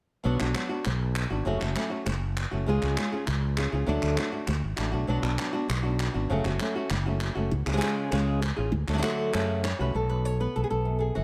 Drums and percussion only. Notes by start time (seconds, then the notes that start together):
0.40 clap
0.55 clap
0.85 clap
1.16 clap
1.61 clap
1.76 clap
2.07 clap
2.37 clap
2.82 clap
2.97 clap
3.28 clap
3.57 clap
4.02 clap
4.17 clap
4.47 clap
4.77 clap
5.23 clap
5.39 clap
5.70 clap
6.00 clap
6.45 clap
6.60 clap
6.90 clap
7.21 clap
7.67 clap
7.81 clap
8.12 clap
8.43 clap
8.88 clap
9.03 clap
9.34 clap
9.64 clap